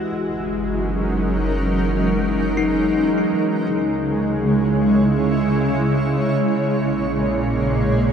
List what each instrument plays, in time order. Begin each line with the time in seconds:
Already playing: synth drone E3 G#3, ambient pad E4 F#4
0.10 analog synth bass F#1, ambient pad F#3
0.19 ambient pad C#4 D#4
0.30 ambient pad A#4
2.57 tine electric piano D#4
3.29 analog synth bass C#2, ambient pad C#3, synth drone C#3 G#3
3.39 ambient pad G#3
3.71 ambient pad C#5
4.06 ambient pad E4
6.50 analog synth bass A#1, ambient pad A#2
6.57 ambient pad A#3
6.73 ambient pad G#4